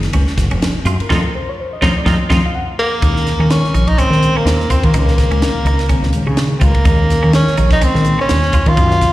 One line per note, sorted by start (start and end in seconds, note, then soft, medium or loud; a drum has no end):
0.00 0.15 A#2 medium
0.00 0.15 D#3 medium
0.00 0.16 G#3 medium
0.00 0.16 A#3 loud
0.00 0.10 D#4 medium
0.00 snare soft
0.00 ride medium
0.13 0.25 C#2 medium
0.13 0.34 C#4 medium
0.13 ride medium
0.27 snare soft
0.37 0.48 F#1 loud
0.37 kick medium
0.37 snare soft
0.37 hi-hat pedal medium
0.37 ride medium
0.51 0.71 F1 medium
0.51 0.72 C#4 medium
0.51 ride medium
0.62 snare loud
0.62 ride medium
0.85 0.96 F#2 medium
0.85 1.06 F4 medium
0.85 hi-hat pedal medium
0.85 ride medium
1.00 1.11 A#4 medium
1.00 muted fretless electric bass stroke soft
1.00 ride medium
1.09 1.20 F2 loud
1.09 1.20 D#3 medium
1.09 1.19 F3 loud
1.09 1.19 A3 medium
1.09 1.19 C4 loud
1.09 1.18 D#4 medium
1.09 1.18 F4 medium
1.09 1.25 A4 medium
1.09 kick medium
1.09 snare medium
1.26 1.35 A#4 medium
1.35 1.48 C5 medium
1.49 1.59 C#5 medium
1.60 1.72 C5 medium
1.73 1.83 D#5 medium
1.81 1.92 F2 medium
1.81 1.91 D#3 medium
1.81 1.90 F3 medium
1.81 1.91 A3 medium
1.81 1.91 C4 medium
1.81 1.91 D#4 medium
1.81 1.91 F4 medium
1.81 1.95 C#5 loud
1.81 kick medium
1.81 snare medium
1.98 2.07 D5 loud
2.04 2.16 F2 medium
2.04 2.14 D#3 medium
2.04 2.14 F3 loud
2.04 2.14 A3 medium
2.04 2.15 C4 medium
2.04 2.15 D#4 loud
2.04 2.15 F4 medium
2.04 2.41 D#5 medium
2.04 kick medium
2.04 snare medium
2.29 2.40 F2 medium
2.29 2.38 D#3 loud
2.29 2.38 F3 loud
2.29 2.38 A3 loud
2.29 2.39 C4 medium
2.29 2.39 D#4 medium
2.29 2.39 F4 medium
2.29 kick medium
2.29 snare medium
2.46 2.55 F5 medium
2.55 2.69 F#5 medium
2.79 3.52 A#3 loud
3.00 3.32 D#2 medium
3.00 3.74 A#2 medium
3.00 3.75 D#3 medium
3.00 3.75 G#3 medium
3.00 3.76 C#4 medium
3.00 3.22 D#4 medium
3.00 kick loud
3.00 hi-hat pedal medium
3.00 ride medium
3.16 snare soft
3.27 snare soft
3.27 hi-hat pedal medium
3.27 ride medium
3.39 3.58 D#3 medium
3.39 3.60 C#4 medium
3.50 3.90 C#4 medium
3.50 snare loud
3.50 hi-hat pedal medium
3.50 ride medium
3.64 muted fretless electric bass stroke soft
3.64 snare soft
3.74 3.93 A#1 medium
3.74 3.94 D#4 medium
3.74 hi-hat pedal medium
3.74 ride medium
3.88 4.00 D#4 medium
3.88 kick medium
3.88 ride medium
3.97 4.17 A#2 medium
3.97 4.17 D#3 medium
3.97 4.17 G#3 medium
3.97 4.39 C4 loud
3.97 4.19 C#4 medium
3.97 4.18 C#4 medium
3.97 kick medium
3.97 hi-hat pedal medium
3.97 ride medium
4.10 4.30 D#3 medium
4.10 snare soft
4.22 4.78 A#2 medium
4.22 4.79 D#3 medium
4.22 4.79 G#3 medium
4.22 4.79 C#4 medium
4.22 hi-hat pedal medium
4.22 ride medium
4.36 4.72 A#3 medium
4.36 4.56 C#4 medium
4.45 4.65 D#2 medium
4.45 snare loud
4.45 hi-hat pedal medium
4.45 ride medium
4.60 snare soft
4.70 4.87 C4 medium
4.70 4.90 F4 medium
4.70 kick medium
4.70 hi-hat pedal medium
4.70 ride medium
4.83 4.92 D#3 medium
4.83 6.29 A#3 medium
4.83 kick medium
4.83 ride medium
4.94 5.24 C#2 loud
4.94 5.68 A#2 medium
4.94 5.69 D#3 medium
4.94 5.69 G#3 medium
4.94 5.69 C#4 medium
4.94 5.14 D#4 medium
4.94 kick medium
4.94 hi-hat pedal medium
4.94 ride medium
5.08 snare soft
5.18 kick medium
5.18 snare soft
5.18 hi-hat pedal medium
5.18 ride medium
5.31 5.50 C#2 medium
5.31 5.51 C#4 medium
5.31 ride medium
5.42 snare medium
5.42 hi-hat pedal medium
5.42 ride medium
5.65 5.95 C#2 medium
5.65 5.87 D#4 medium
5.65 hi-hat pedal medium
5.65 ride medium
5.79 snare soft
5.79 ride medium
5.89 6.09 A#2 medium
5.89 6.10 D#3 medium
5.89 6.10 G#3 medium
5.89 6.10 C4 medium
5.89 6.10 C#4 medium
5.89 kick medium
5.89 hi-hat pedal medium
5.89 ride medium
6.02 6.11 C#2 medium
6.02 snare soft
6.13 6.70 A#2 medium
6.13 6.70 D#3 medium
6.13 6.70 G#3 medium
6.13 6.71 C#4 medium
6.13 hi-hat pedal medium
6.13 ride medium
6.27 6.54 C#3 medium
6.27 6.47 C#4 medium
6.37 snare loud
6.37 hi-hat pedal medium
6.37 ride medium
6.57 6.72 C#2 medium
6.57 6.66 C4 medium
6.57 hi-hat pedal medium
6.57 ride medium
6.61 7.34 A#3 medium
6.61 6.82 F4 medium
6.61 kick medium
6.74 kick medium
6.74 ride medium
6.85 7.15 D#2 medium
6.85 7.59 A#2 medium
6.85 7.59 D#3 medium
6.85 7.60 G#3 medium
6.85 7.60 C#4 medium
6.85 7.06 D#4 medium
6.85 kick loud
6.85 hi-hat pedal medium
6.85 ride medium
7.10 snare soft
7.10 hi-hat pedal medium
7.10 ride medium
7.23 7.43 D#3 medium
7.23 7.43 C#4 medium
7.33 7.69 C#4 medium
7.33 snare medium
7.33 hi-hat pedal medium
7.33 ride medium
7.47 muted fretless electric bass stroke soft
7.47 snare soft
7.57 7.77 A#1 medium
7.57 7.78 D#4 medium
7.57 hi-hat pedal medium
7.57 ride medium
7.70 7.85 D#4 medium
7.70 kick medium
7.70 snare soft
7.70 ride medium
7.80 8.00 A#2 medium
7.80 8.01 D#3 medium
7.80 8.01 G#3 medium
7.80 8.20 C4 medium
7.80 8.02 C#4 medium
7.80 8.01 C#4 medium
7.80 kick medium
7.80 hi-hat pedal medium
7.80 ride medium
7.95 8.14 D#3 medium
7.95 snare soft
8.04 8.61 A#2 medium
8.04 8.61 D#3 medium
8.04 8.61 G#3 medium
8.04 8.62 A#3 medium
8.04 hi-hat pedal medium
8.04 ride medium
8.19 8.39 C#4 medium
8.19 8.70 C#4 medium
8.29 8.49 D#2 medium
8.29 snare loud
8.29 hi-hat pedal medium
8.29 ride medium
8.42 snare soft
8.52 8.74 F4 medium
8.52 kick medium
8.52 hi-hat pedal medium
8.52 ride medium
8.66 8.75 D#3 medium
8.66 9.13 F4 loud
8.66 kick medium
8.66 ride medium
8.76 9.07 F#2 loud
8.76 9.13 A#2 medium
8.76 9.13 C#3 medium
8.76 9.13 D#3 medium
8.76 9.13 G#3 medium
8.76 8.98 D#4 medium
8.76 kick medium
8.76 hi-hat pedal medium
8.76 ride medium
8.91 snare soft
9.01 kick medium
9.01 snare soft
9.01 hi-hat pedal medium
9.01 ride medium